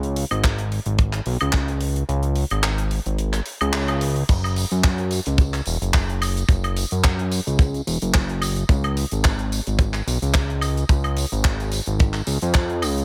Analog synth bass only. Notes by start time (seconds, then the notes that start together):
Already playing: C#2
0.31 G#1
0.86 G#1
1.26 B1
1.42 C#2
2.09 C#2
2.51 G#1
3.06 G#1
3.61 C#2
4.29 F#1
4.72 F#2
5.27 C#2
5.67 E1
5.82 F#1
6.49 F#1
6.92 F#2
7.47 C#2
7.87 E1
8.02 F#1
8.69 C#2
9.12 G#1
9.67 G#1
10.07 B1
10.22 C#2
10.89 C#2
11.32 G#1
11.87 G#1
12.27 C#2
12.42 F2
12.83 C#2